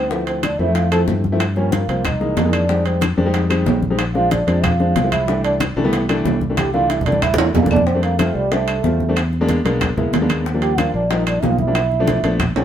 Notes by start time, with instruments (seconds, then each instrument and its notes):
Already playing: fingered electric bass D2, trombone C4
0.10 upright piano F3 A3 C4 E4, trombone B3, high bongo, high conga
0.27 trombone C4, high bongo, high conga, high timbale
0.43 trombone D4, high bongo, high conga, high timbale, claves
0.59 fingered electric bass F2, upright piano F3 A3 C4 E4, trombone E4, high conga
0.67 upright piano F3 A3 C4 E4
0.75 trombone F4, high bongo, high conga, high timbale
0.91 upright piano F3 A3 C4 E4, trombone A4, high bongo, high conga, high timbale, claves
1.08 fingered electric bass G2, high bongo, low bongo, high conga
1.24 high bongo, high conga
1.32 upright piano F3 A3 C4 E4
1.40 high bongo, high timbale, claves
1.56 upright piano F3 G3 A#3 C#4, trombone C#4, high bongo, high conga
1.72 trombone A#3, high bongo, high conga, high timbale
1.88 fingered electric bass C2, upright piano F3 G3 A#3 C4, high conga, high timbale
2.05 trombone D#4, high bongo, high conga, low conga, high timbale, claves
2.20 upright piano E3 G#3 A#3 D#4, high bongo, high conga
2.37 fingered electric bass F2, high bongo, low bongo, high conga, high timbale, low timbale
2.45 upright piano E3 G#3 A#3 D#4
2.53 trombone D4, high bongo, high timbale, claves
2.69 upright piano G3 G#3 C4 D#4, high bongo, high conga
2.85 trombone C4, high bongo, high conga, high timbale
3.01 high bongo, high conga, high timbale, claves
3.17 fingered electric bass F2, upright piano G3 G#3 C4 D4, high conga
3.26 upright piano G3 G#3 C4 D#4
3.34 high bongo, high conga, high timbale
3.49 upright piano G3 G#3 C4 D#4, high bongo, high conga, high timbale, claves
3.66 fingered electric bass A#1, high bongo, low bongo, high conga, low timbale
3.83 high bongo, high conga
3.90 upright piano G3 G#3 C4 D#4
3.99 high bongo, high timbale, claves
4.15 upright piano F3 G#3 C4 D4, trombone F4, high bongo, high conga
4.31 trombone D4, high bongo, high conga, high timbale
4.47 fingered electric bass F2, upright piano F3 G#3 C4 D4, high conga, high timbale
4.63 trombone F4, high bongo, high conga, low conga, high timbale, claves
4.80 upright piano F3 G#3 C4 D4, high bongo, high conga
4.96 fingered electric bass C2, high bongo, low bongo, high conga, high timbale
5.03 upright piano F3 G#3 C4 E4
5.12 trombone E4, high bongo, high conga, high timbale, claves
5.27 upright piano E3 G3 A3 D4, high bongo, high conga
5.44 trombone D4, high bongo, high conga, high timbale
5.60 high bongo, high conga, high timbale, claves
5.76 fingered electric bass C2, upright piano E3 G3 A3 D4, high conga
5.84 upright piano E3 G3 A3 B3
5.93 high bongo, high conga, high timbale
6.09 upright piano E3 G3 A3 D4, high bongo, high conga, high timbale, claves
6.25 fingered electric bass C2, high bongo, low bongo, high conga, low timbale
6.41 high bongo, high conga
6.49 upright piano E3 G3 A3 D4
6.57 trombone G4, high bongo, high conga, high timbale, claves
6.73 upright piano E3 G3 A3 D4, trombone F4, high bongo
6.90 trombone E4, high bongo, high timbale
7.01 low conga
7.05 fingered electric bass C2, upright piano E3 G3 A3 D4, trombone D4, high timbale
7.12 high conga
7.22 trombone E4, high bongo, low conga, high timbale, claves
7.34 low conga
7.38 fingered electric bass E2, upright piano E3 A3 A#3 D4, trombone G3, high timbale
7.54 fingered electric bass F2, trombone A#3, high bongo, low bongo, low conga, low timbale
7.62 upright piano E3 A3 A#3 D4, low conga
7.70 trombone D4, high bongo, low timbale, claves
7.76 low conga
7.87 trombone C4, high bongo, high conga
7.94 upright piano G3 A3 C4 D4
8.03 trombone A#3, high bongo, high conga, high timbale
8.19 upright piano G3 A3 C4 F4, trombone A3, high bongo, high conga, high timbale, claves
8.35 fingered electric bass C2, trombone G3, high conga
8.51 upright piano G3 A3 C4 D4, trombone A3, high bongo, high conga, high timbale
8.68 high bongo, high conga, high timbale, claves
8.84 fingered electric bass E2, upright piano G3 A3 C4 F4, high bongo, low bongo, high conga
9.00 high bongo, high conga
9.09 upright piano G3 A3 C4 D4
9.16 high bongo, high timbale, claves
9.32 high bongo, high conga
9.41 upright piano G#3 A#3 B3 D4
9.49 high bongo, high conga, high timbale
9.65 fingered electric bass B1, upright piano G#3 A#3 B3 D4, high conga, high timbale
9.81 high bongo, high conga, low conga, high timbale, claves
9.97 fingered electric bass C#2, upright piano G#3 A#3 B3 E4, high bongo, high conga, low conga
10.13 fingered electric bass D#2, high bongo, low bongo, high conga, high timbale, low timbale
10.21 upright piano G#3 A#3 B3 D4
10.30 high bongo, high conga, high timbale, claves
10.46 high bongo, high conga
10.54 upright piano F3 G3 A#3 D4
10.62 trombone G4, high bongo, high conga, high timbale
10.78 upright piano F3 G3 A#3 D4, trombone F4, high bongo, high conga, high timbale, claves
10.94 fingered electric bass A#1, trombone D4, high conga
11.10 upright piano F3 G3 A#3 D#4, trombone D#4, high bongo, high conga, high timbale
11.27 trombone D4, high bongo, high conga, high timbale, claves
11.43 fingered electric bass B1, upright piano F3 G3 A#3 D#4, trombone F4, high bongo, low bongo, high conga, low timbale
11.58 trombone E4, high bongo, high conga
11.67 upright piano F3 G3 A#3 D4
11.75 high bongo, high conga, high timbale, claves
11.91 high bongo, high conga
12.00 upright piano F3 A3 B3 D4
12.07 high bongo, high conga, high timbale
12.23 fingered electric bass A#1, upright piano F3 A3 B3 D4, high conga, high timbale
12.40 high bongo, high conga, low conga, high timbale, claves
12.56 fingered electric bass A#1, upright piano F3 G#3 C4 D4, high bongo, high conga, high timbale